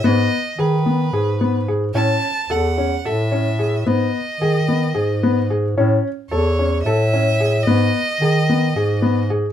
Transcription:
<<
  \new Staff \with { instrumentName = "Violin" } { \time 7/8 \key gis \phrygian \tempo 4 = 110 dis''4 b'2 r8 | a''4 fis''4 e''4. | dis''2. r8 | r4 cis''4 e''4. |
dis''2. r8 | }
  \new Staff \with { instrumentName = "Felt piano" } { \time 7/8 \key gis \phrygian b4 gis'8 b8 gis'8 b8 gis'8 | cis'4 a'8 cis'8 a'8 cis'8 gis'8 | b4 gis'8 b8 gis'8 b8 gis'8 | cis'4 a'8 cis'8 a'8 cis'8 gis'8 |
b4 gis'8 b8 gis'8 b8 gis'8 | }
  \new Staff \with { instrumentName = "Bass clarinet" } { \clef bass \time 7/8 \key gis \phrygian gis,8 r8 dis4 gis,4. | a,8 r8 e,4 a,4. | gis,8 r8 dis4 gis,4. | a,8 r8 e,4 a,4. |
gis,8 r8 dis4 gis,4. | }
>>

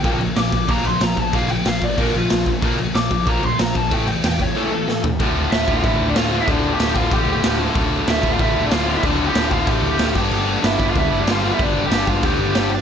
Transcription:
<<
  \new Staff \with { instrumentName = "Lead electric guitar" } { \time 4/4 \key bes \lydian \tempo 4 = 187 g''8 r8 d'''4 bes''8 c'''8 bes''8 a''8 | f''8 g''8 f''8 d''8 bes'8 f'4 r8 | r4 d'''4 bes''8 c'''8 bes''8 a''8 | g''8 g''8 g''8 cis''8 a'8 a'4 r8 |
\key d \dorian r4 <e' e''>8. <f' f''>16 <e' e''>8. <d' d''>16 <f' f''>8. <e' e''>16 | <d' d''>8. <g' g''>8. <f' f''>8 <g' g''>4. r8 | r4 <e' e''>8. <f' f''>16 <e' e''>8. <d' d''>16 <f' f''>8. <e' e''>16 | <d' d''>8. <g' g''>8. <f' f''>8 <g' g''>4. r8 |
r4 <e' e''>8. <f' f''>16 <e' e''>8. <d' d''>16 <f' f''>8. <e' e''>16 | <d' d''>8. <g' g''>8. <f' f''>8 <g' g''>4. r8 | }
  \new Staff \with { instrumentName = "Overdriven electric guitar" } { \clef bass \time 4/4 \key bes \lydian <bes, f bes>8 <bes, f>8 <bes, f>8 <bes, f>8 <bes, f bes>8 <bes, f>8 <bes, f>8 <bes, f>8 | <bes, f bes>8 <bes, f>8 <bes, f>8 <bes, f>8 <bes, f bes>8 <bes, f>8 <bes, f>8 <bes, f>8 | <bes, f bes>8 <bes, f>8 <bes, f>8 <bes, f>8 <bes, f bes>8 <bes, f>8 <bes, f>8 <bes, f>8 | <a, e a>8 <a, e>8 <a, e>8 <a, e>8 <a, e a>8 <a, e>8 <a, e>8 <a, e>8 |
\key d \dorian <d, a, d a f'>4. <d, a, d a f'>4. <d, a, d a f'>4 | <d, a, d a f'>4. <d, a, d a f'>4. <d, a, d a f'>4 | <d, a, d a f'>4. <d, a, d a f'>4. <d, a, d a f'>4 | <d, a, d a f'>4. <d, a, d a f'>4. <d, a, d a f'>8 <g, d g b d' g'>8~ |
<g, d g b d' g'>4 <g, d g b d' g'>4. <g, d g b d' g'>4 <g, d g b d' g'>8~ | <g, d g b d' g'>4 <g, d g b d' g'>4. <g, d g b d' g'>4 r8 | }
  \new Staff \with { instrumentName = "Distorted electric guitar" } { \clef bass \time 4/4 \key bes \lydian <bes, f bes>8 <bes, f>8 <bes, f>8 <bes, f>8 <bes, f bes>8 <bes, f>8 <bes, f>8 <bes, f>8 | <bes, f bes>8 <bes, f>8 <bes, f>8 <bes, f>8 <bes, f bes>8 <bes, f>8 <bes, f>8 <bes, f>8 | <bes, f bes>8 <bes, f>8 <bes, f>8 <bes, f>8 <bes, f bes>8 <bes, f>8 <bes, f>8 <bes, f>8 | <a, e a>8 <a, e>8 <a, e>8 <a, e>8 <a, e a>8 <a, e>8 <a, e>8 <a, e>8 |
\key d \dorian <d, a, d>2.~ <d, a, d>8 <d, a, d>8 | <d, a, d>2.~ <d, a, d>8 <d, a, d>8 | <d, a, d>2.~ <d, a, d>8 <d, a, d>8 | <d, a, d>2.~ <d, a, d>8 <g, d g>8~ |
<g, d g>2. <g, d g>8 <g, d g>8~ | <g, d g>2. <g, d g>8 r8 | }
  \new Staff \with { instrumentName = "Picked electric bass" } { \clef bass \time 4/4 \key bes \lydian bes,,4 bes,,4 bes,,8 bes,,8 bes,,4 | bes,,4 bes,,4 bes,,8 bes,,8 bes,,4 | bes,,4 bes,,4 bes,,8 bes,,8 bes,,4 | a,,4 e,,4 r2 |
\key d \dorian d,,4 d,,8 d,,8 a,,8 d,,8 d,,4 | d,,4 d,,8 d,,8 a,,8 d,,8 d,,4 | d,,4 d,,8 d,,8 a,,8 d,,8 d,,4 | d,,4 d,,8 d,,8 a,,8 d,,8 d,,8 g,,8 |
g,,4 g,,8 g,,8 d,8 g,,8 g,,4 | g,,4 g,,8 g,,8 d,8 g,,8 g,,4 | }
  \new DrumStaff \with { instrumentName = "Drums" } \drummode { \time 4/4 <cymc bd>8 cymc8 <cymc sn>8 <cymc bd>8 <cymc bd>8 cymc8 <cymc sn>8 <cymc bd>8 | <cymc bd>8 cymc8 <cymc sn>8 <cymc bd>8 <cymc bd>8 cymc8 <cymc sn>8 <cymc bd>8 | <cymc bd>8 cymc8 <cymc sn>8 <cymc bd>8 <cymc bd>8 cymc8 <cymc sn>8 <cymc bd>8 | <cymc bd>8 cymc8 <cymc sn>8 <cymc bd>8 r4 sn8 tomfh8 |
<cymc bd>4 <cymc sn>8 bd8 <cymc bd>4 <cymc sn>4 | <cymc bd>4 <cymc sn>8 bd8 <cymc bd>4 <cymc sn>4 | <cymc bd>4 <cymc sn>8 bd8 <cymc bd>4 <cymc sn>4 | <cymc bd>4 <cymc sn>8 bd8 <cymc bd>4 <cymc sn>8 <cymc bd>8 |
cymc4 <cymc sn>8 bd8 <cymc bd>4 <cymc sn>4 | <cymc bd>4 <cymc sn>8 bd8 <cymc bd>4 <cymc sn>4 | }
>>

